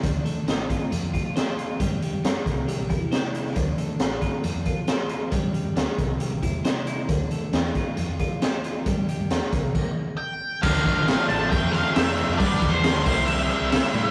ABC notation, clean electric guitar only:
X:1
M:4/4
L:1/8
Q:1/4=136
K:Dm
V:1 name="Clean electric guitar"
D, A, C F F, F c F | G, G, D C, G, E c E | D, A, C F F, F c F | G, G, D C, G, E c E |
D, A, C F F, F c F | G, G, D C, z4 | z8 | z8 |]